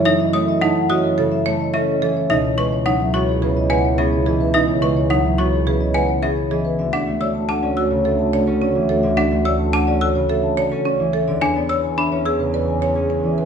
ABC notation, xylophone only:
X:1
M:4/4
L:1/16
Q:1/4=107
K:C#m
V:1 name="Xylophone"
e z d' z f z d' z4 z e z3 | e z c' z f z c' z3 g z e z3 | e z c' z f z c' z3 g z e z3 | [K:Dlyd] z f z e' z a z e' z8 |
z f z e' z a z e' z8 | z g z e' z b z e' z8 |]